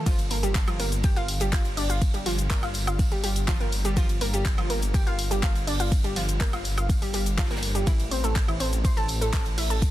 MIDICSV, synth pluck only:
0, 0, Header, 1, 2, 480
1, 0, Start_track
1, 0, Tempo, 487805
1, 63, Time_signature, 4, 2, 24, 8
1, 9748, End_track
2, 0, Start_track
2, 0, Title_t, "Synth pluck"
2, 0, Program_c, 0, 84
2, 62, Note_on_c, 0, 53, 105
2, 62, Note_on_c, 0, 65, 70
2, 137, Note_off_c, 0, 53, 0
2, 137, Note_off_c, 0, 65, 0
2, 302, Note_on_c, 0, 58, 74
2, 302, Note_on_c, 0, 70, 54
2, 377, Note_off_c, 0, 58, 0
2, 377, Note_off_c, 0, 70, 0
2, 424, Note_on_c, 0, 67, 55
2, 425, Note_on_c, 0, 55, 77
2, 468, Note_off_c, 0, 55, 0
2, 468, Note_off_c, 0, 67, 0
2, 666, Note_on_c, 0, 53, 76
2, 666, Note_on_c, 0, 65, 53
2, 709, Note_off_c, 0, 53, 0
2, 709, Note_off_c, 0, 65, 0
2, 783, Note_on_c, 0, 58, 78
2, 783, Note_on_c, 0, 70, 55
2, 858, Note_off_c, 0, 58, 0
2, 858, Note_off_c, 0, 70, 0
2, 1022, Note_on_c, 0, 67, 86
2, 1022, Note_on_c, 0, 79, 60
2, 1067, Note_off_c, 0, 67, 0
2, 1067, Note_off_c, 0, 79, 0
2, 1145, Note_on_c, 0, 65, 102
2, 1145, Note_on_c, 0, 77, 71
2, 1217, Note_off_c, 0, 65, 0
2, 1217, Note_off_c, 0, 77, 0
2, 1385, Note_on_c, 0, 55, 78
2, 1385, Note_on_c, 0, 67, 53
2, 1428, Note_off_c, 0, 55, 0
2, 1428, Note_off_c, 0, 67, 0
2, 1503, Note_on_c, 0, 77, 57
2, 1504, Note_on_c, 0, 65, 84
2, 1615, Note_off_c, 0, 65, 0
2, 1615, Note_off_c, 0, 77, 0
2, 1743, Note_on_c, 0, 74, 54
2, 1744, Note_on_c, 0, 62, 79
2, 1818, Note_off_c, 0, 62, 0
2, 1818, Note_off_c, 0, 74, 0
2, 1867, Note_on_c, 0, 65, 81
2, 1867, Note_on_c, 0, 77, 54
2, 1909, Note_off_c, 0, 65, 0
2, 1909, Note_off_c, 0, 77, 0
2, 2106, Note_on_c, 0, 55, 77
2, 2106, Note_on_c, 0, 67, 54
2, 2213, Note_off_c, 0, 55, 0
2, 2213, Note_off_c, 0, 67, 0
2, 2224, Note_on_c, 0, 53, 79
2, 2224, Note_on_c, 0, 65, 54
2, 2298, Note_off_c, 0, 53, 0
2, 2298, Note_off_c, 0, 65, 0
2, 2463, Note_on_c, 0, 58, 84
2, 2464, Note_on_c, 0, 70, 57
2, 2508, Note_off_c, 0, 58, 0
2, 2508, Note_off_c, 0, 70, 0
2, 2586, Note_on_c, 0, 65, 75
2, 2586, Note_on_c, 0, 77, 53
2, 2657, Note_off_c, 0, 65, 0
2, 2657, Note_off_c, 0, 77, 0
2, 2827, Note_on_c, 0, 65, 75
2, 2827, Note_on_c, 0, 77, 53
2, 2869, Note_off_c, 0, 65, 0
2, 2869, Note_off_c, 0, 77, 0
2, 3067, Note_on_c, 0, 55, 77
2, 3067, Note_on_c, 0, 67, 53
2, 3173, Note_off_c, 0, 55, 0
2, 3173, Note_off_c, 0, 67, 0
2, 3184, Note_on_c, 0, 55, 80
2, 3184, Note_on_c, 0, 67, 56
2, 3295, Note_off_c, 0, 55, 0
2, 3295, Note_off_c, 0, 67, 0
2, 3423, Note_on_c, 0, 65, 71
2, 3424, Note_on_c, 0, 53, 101
2, 3498, Note_off_c, 0, 53, 0
2, 3498, Note_off_c, 0, 65, 0
2, 3547, Note_on_c, 0, 58, 77
2, 3547, Note_on_c, 0, 70, 55
2, 3617, Note_off_c, 0, 58, 0
2, 3618, Note_off_c, 0, 70, 0
2, 3787, Note_on_c, 0, 55, 79
2, 3787, Note_on_c, 0, 67, 54
2, 3858, Note_off_c, 0, 55, 0
2, 3858, Note_off_c, 0, 67, 0
2, 3904, Note_on_c, 0, 65, 74
2, 3905, Note_on_c, 0, 53, 104
2, 3978, Note_off_c, 0, 53, 0
2, 3978, Note_off_c, 0, 65, 0
2, 4145, Note_on_c, 0, 58, 76
2, 4145, Note_on_c, 0, 70, 55
2, 4218, Note_off_c, 0, 58, 0
2, 4219, Note_off_c, 0, 70, 0
2, 4266, Note_on_c, 0, 67, 55
2, 4267, Note_on_c, 0, 55, 79
2, 4309, Note_off_c, 0, 55, 0
2, 4309, Note_off_c, 0, 67, 0
2, 4506, Note_on_c, 0, 53, 78
2, 4507, Note_on_c, 0, 65, 55
2, 4549, Note_off_c, 0, 53, 0
2, 4549, Note_off_c, 0, 65, 0
2, 4624, Note_on_c, 0, 58, 79
2, 4624, Note_on_c, 0, 70, 56
2, 4698, Note_off_c, 0, 58, 0
2, 4698, Note_off_c, 0, 70, 0
2, 4862, Note_on_c, 0, 79, 59
2, 4863, Note_on_c, 0, 67, 84
2, 4907, Note_off_c, 0, 79, 0
2, 4908, Note_off_c, 0, 67, 0
2, 4985, Note_on_c, 0, 65, 101
2, 4986, Note_on_c, 0, 77, 71
2, 5057, Note_off_c, 0, 65, 0
2, 5057, Note_off_c, 0, 77, 0
2, 5224, Note_on_c, 0, 55, 78
2, 5225, Note_on_c, 0, 67, 53
2, 5268, Note_off_c, 0, 55, 0
2, 5268, Note_off_c, 0, 67, 0
2, 5342, Note_on_c, 0, 65, 83
2, 5342, Note_on_c, 0, 77, 60
2, 5454, Note_off_c, 0, 65, 0
2, 5454, Note_off_c, 0, 77, 0
2, 5582, Note_on_c, 0, 62, 77
2, 5582, Note_on_c, 0, 74, 55
2, 5657, Note_off_c, 0, 62, 0
2, 5657, Note_off_c, 0, 74, 0
2, 5706, Note_on_c, 0, 65, 81
2, 5706, Note_on_c, 0, 77, 56
2, 5749, Note_off_c, 0, 65, 0
2, 5749, Note_off_c, 0, 77, 0
2, 5946, Note_on_c, 0, 55, 78
2, 5946, Note_on_c, 0, 67, 55
2, 6053, Note_off_c, 0, 55, 0
2, 6053, Note_off_c, 0, 67, 0
2, 6063, Note_on_c, 0, 53, 75
2, 6063, Note_on_c, 0, 65, 54
2, 6138, Note_off_c, 0, 53, 0
2, 6138, Note_off_c, 0, 65, 0
2, 6303, Note_on_c, 0, 58, 83
2, 6303, Note_on_c, 0, 70, 59
2, 6348, Note_off_c, 0, 58, 0
2, 6348, Note_off_c, 0, 70, 0
2, 6427, Note_on_c, 0, 65, 77
2, 6427, Note_on_c, 0, 77, 54
2, 6498, Note_off_c, 0, 65, 0
2, 6498, Note_off_c, 0, 77, 0
2, 6666, Note_on_c, 0, 77, 52
2, 6667, Note_on_c, 0, 65, 76
2, 6709, Note_off_c, 0, 65, 0
2, 6709, Note_off_c, 0, 77, 0
2, 6906, Note_on_c, 0, 67, 54
2, 6907, Note_on_c, 0, 55, 76
2, 7013, Note_off_c, 0, 55, 0
2, 7013, Note_off_c, 0, 67, 0
2, 7024, Note_on_c, 0, 55, 79
2, 7024, Note_on_c, 0, 67, 55
2, 7135, Note_off_c, 0, 55, 0
2, 7135, Note_off_c, 0, 67, 0
2, 7263, Note_on_c, 0, 53, 103
2, 7263, Note_on_c, 0, 65, 73
2, 7338, Note_off_c, 0, 53, 0
2, 7338, Note_off_c, 0, 65, 0
2, 7386, Note_on_c, 0, 58, 78
2, 7386, Note_on_c, 0, 70, 52
2, 7457, Note_off_c, 0, 58, 0
2, 7457, Note_off_c, 0, 70, 0
2, 7626, Note_on_c, 0, 55, 79
2, 7626, Note_on_c, 0, 67, 55
2, 7697, Note_off_c, 0, 55, 0
2, 7697, Note_off_c, 0, 67, 0
2, 7743, Note_on_c, 0, 52, 104
2, 7743, Note_on_c, 0, 64, 71
2, 7817, Note_off_c, 0, 52, 0
2, 7818, Note_off_c, 0, 64, 0
2, 7983, Note_on_c, 0, 72, 54
2, 7984, Note_on_c, 0, 60, 76
2, 8058, Note_off_c, 0, 60, 0
2, 8058, Note_off_c, 0, 72, 0
2, 8106, Note_on_c, 0, 69, 54
2, 8107, Note_on_c, 0, 57, 78
2, 8149, Note_off_c, 0, 57, 0
2, 8149, Note_off_c, 0, 69, 0
2, 8346, Note_on_c, 0, 52, 78
2, 8346, Note_on_c, 0, 64, 54
2, 8389, Note_off_c, 0, 52, 0
2, 8389, Note_off_c, 0, 64, 0
2, 8463, Note_on_c, 0, 60, 77
2, 8463, Note_on_c, 0, 72, 55
2, 8538, Note_off_c, 0, 60, 0
2, 8538, Note_off_c, 0, 72, 0
2, 8703, Note_on_c, 0, 72, 85
2, 8703, Note_on_c, 0, 84, 61
2, 8748, Note_off_c, 0, 72, 0
2, 8748, Note_off_c, 0, 84, 0
2, 8825, Note_on_c, 0, 69, 102
2, 8825, Note_on_c, 0, 81, 72
2, 8897, Note_off_c, 0, 69, 0
2, 8897, Note_off_c, 0, 81, 0
2, 9066, Note_on_c, 0, 57, 77
2, 9066, Note_on_c, 0, 69, 56
2, 9109, Note_off_c, 0, 57, 0
2, 9109, Note_off_c, 0, 69, 0
2, 9183, Note_on_c, 0, 69, 83
2, 9184, Note_on_c, 0, 81, 60
2, 9295, Note_off_c, 0, 69, 0
2, 9295, Note_off_c, 0, 81, 0
2, 9424, Note_on_c, 0, 64, 79
2, 9424, Note_on_c, 0, 76, 56
2, 9498, Note_off_c, 0, 64, 0
2, 9498, Note_off_c, 0, 76, 0
2, 9547, Note_on_c, 0, 69, 78
2, 9547, Note_on_c, 0, 81, 54
2, 9589, Note_off_c, 0, 69, 0
2, 9589, Note_off_c, 0, 81, 0
2, 9748, End_track
0, 0, End_of_file